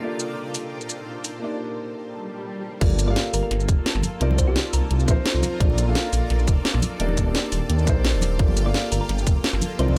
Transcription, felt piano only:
0.00 A#3 D4 F4 A4
0.05 D5
1.39 A#3 D4 D#4 G4
1.44 D5
2.80 A#3 F4 G4 A4 D5
3.06 A#3 F4 G4 A4
3.10 F5
4.20 C4 D#4 F4 A#4 D5
4.46 C4 D#4 F4 A#4 D5
5.06 C4 D#4 F4 A#4
5.11 C5
5.59 A#3 D4 F4 A4 D5
5.85 A#3 D4 F4 A4
5.89 F5
6.99 A#3 D4 D#4 G4 D5
7.25 A#3 D4 D#4 G4 D5
7.85 A#3 D4 D#4 G4
7.89 C5
8.38 A#3 F4 G4 A4 D5
8.64 A#3 F4 G4 A4
8.68 F5
9.78 C4 D#4 F4 A#4 D5

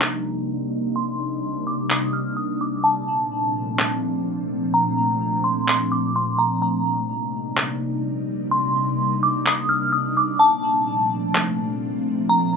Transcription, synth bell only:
0.96 C6
1.67 D6
1.91 D#6
2.13 F6
2.37 D#6
2.61 D6
2.84 A5
4.74 A#5
5.44 C6
5.92 D6
6.16 C6
6.39 A#5
6.62 A#5
8.51 C6
9.23 D6
9.47 D#6
9.69 F6
9.92 D#6
10.17 D6
10.39 A5
12.29 A#5

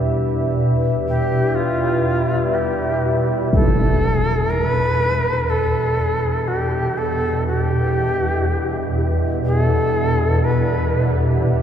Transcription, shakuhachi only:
1.08 G4
1.55 F4
2.54 G4
3.54 A4
4.51 A#4
4.65 B4
5.50 A4
6.48 G4
6.98 A4
7.47 G4
9.45 G#4
9.60 A4
10.44 B4

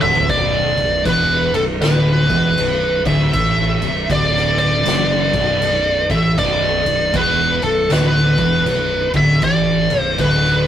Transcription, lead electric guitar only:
0.02 E5
0.30 D5
1.06 B4
1.55 A4
1.82 B4
3.07 E5
4.12 D5
4.59 D5
6.11 E5
6.39 D5
7.16 B4
7.64 A4
7.93 B4
9.17 E5
9.44 D5
10.01 C5
10.20 B4

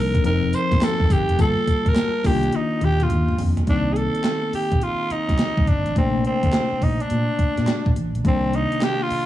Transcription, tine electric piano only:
Already playing: F3 A#3 D4 D#4
0.24 F3 C4 D#4 A#4
1.39 G3 A#3 F4 A5
2.24 D3 A#3 D4 F4
2.30 D#3
3.67 D#3 A#3 C4 D#4
5.96 C3 A3 A#3 D4
8.24 C3 D#3 A#3 D4

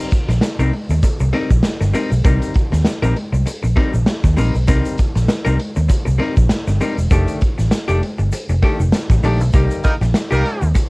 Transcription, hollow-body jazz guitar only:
0.29 muted hollow-body jazz guitar stroke
0.42 muted hollow-body jazz guitar stroke
0.59 G3 C4 D#4 A#4
0.73 muted hollow-body jazz guitar stroke
0.91 muted hollow-body jazz guitar stroke
1.03 muted hollow-body jazz guitar stroke
1.20 muted hollow-body jazz guitar stroke
1.33 G3 C4 D#4 A#4
1.50 muted hollow-body jazz guitar stroke
1.64 muted hollow-body jazz guitar stroke
1.81 muted hollow-body jazz guitar stroke
1.94 G3 C4 D#4 A#4
2.11 muted hollow-body jazz guitar stroke
2.24 G3 C4 D#4 A#4
2.72 muted hollow-body jazz guitar stroke
2.86 muted hollow-body jazz guitar stroke
3.02 G3 C4 D#4 A#4
3.16 muted hollow-body jazz guitar stroke
3.32 muted hollow-body jazz guitar stroke
3.46 muted hollow-body jazz guitar stroke
3.63 muted hollow-body jazz guitar stroke
3.76 G3 C4 D#4 A#4
3.94 muted hollow-body jazz guitar stroke
4.07 muted hollow-body jazz guitar stroke
4.24 muted hollow-body jazz guitar stroke
4.37 G3 C4 D#4 A#4
4.55 muted hollow-body jazz guitar stroke
4.67 G3 C4 D#4 A#4
5.16 muted hollow-body jazz guitar stroke
5.29 muted hollow-body jazz guitar stroke
5.45 G3 C4 D#4 A#4
5.58 muted hollow-body jazz guitar stroke
5.76 muted hollow-body jazz guitar stroke
5.88 muted hollow-body jazz guitar stroke
6.05 muted hollow-body jazz guitar stroke
6.18 G3 C4 D#4 A#4
6.36 muted hollow-body jazz guitar stroke
6.50 muted hollow-body jazz guitar stroke
6.68 muted hollow-body jazz guitar stroke
6.81 G3 C4 D#4 A#4
6.97 muted hollow-body jazz guitar stroke
7.11 D#3 A3 D4 G4
7.58 muted hollow-body jazz guitar stroke
7.71 muted hollow-body jazz guitar stroke
7.88 D#3 A3 D4 G4
8.02 muted hollow-body jazz guitar stroke
8.18 muted hollow-body jazz guitar stroke
8.33 muted hollow-body jazz guitar stroke
8.49 muted hollow-body jazz guitar stroke
8.62 D#3 A3 D4 G4
8.80 muted hollow-body jazz guitar stroke
8.95 muted hollow-body jazz guitar stroke
9.11 muted hollow-body jazz guitar stroke
9.24 D#3 A3 D4 G4
9.41 muted hollow-body jazz guitar stroke
9.53 G3 A#3 D#4 G4
10.01 muted hollow-body jazz guitar stroke
10.15 muted hollow-body jazz guitar stroke
10.31 G3 A#3 D#4 G4
10.44 muted hollow-body jazz guitar stroke
10.61 muted hollow-body jazz guitar stroke
10.75 muted hollow-body jazz guitar stroke

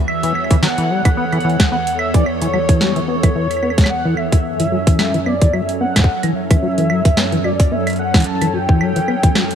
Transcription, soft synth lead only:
0.08 E5
0.63 F#5
1.17 F#5
1.72 F#5
1.99 E5
2.14 D5
2.26 C#5
3.08 C#5
3.90 F#5
4.17 E5
5.26 D5
5.54 E5
5.81 F#5
6.08 F#5
6.35 E5
7.44 D5
7.72 E5
7.99 F#5
8.26 A5
8.54 G5

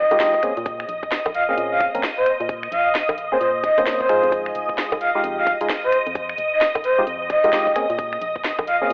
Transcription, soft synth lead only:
Already playing: D#5
1.35 F5
1.49 F5
1.72 F5
2.17 C5
2.72 F5
3.32 C5
3.41 C5
3.64 D#5
4.01 C5
5.01 F5
5.15 F5
5.38 F5
5.84 C5
6.53 D#5
6.84 C5
7.30 D#5
8.67 F5
8.82 F5

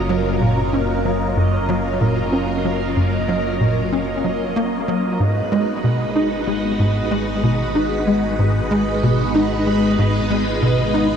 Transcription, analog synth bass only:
0.09 F#3
0.41 A#2
0.73 C#4
1.05 F#3
1.37 F#2
1.69 F#3
2.01 A#2
2.32 C#4
2.65 F#3
2.97 F#2
3.28 F#3
3.61 A#2
3.92 C#4
4.24 F#3
4.56 A#3
4.88 F#3
5.20 G#2
5.52 G#3
5.84 B2
6.16 D#4
6.47 G#3
6.79 G#2
7.11 G#3
7.43 B2
7.75 D#4
8.07 G#3
8.39 G#2
8.71 G#3
9.03 B2
9.35 D#4
9.67 G#3
9.98 G#2
10.30 G#3
10.62 B2
10.94 D#4

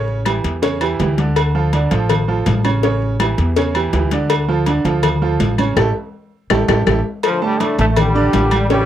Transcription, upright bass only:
Already playing: A1
0.44 E2
1.00 D2
1.91 A1
2.47 A1
3.38 E2
3.93 D2
4.85 D2
5.40 A1
5.77 A1
6.50 A1
6.68 A1
6.87 A1
7.78 A1
8.33 A1

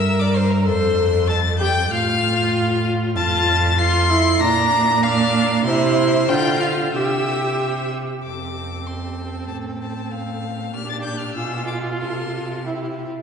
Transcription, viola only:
Already playing: A#4
0.66 A4
1.28 A4
1.60 G4
1.90 F4
3.17 F4
3.78 F4
4.09 E4
4.40 D4
5.04 D4
5.67 E4
6.30 F4
6.96 G4
8.26 C4
10.75 D4
11.37 F4
12.67 E4

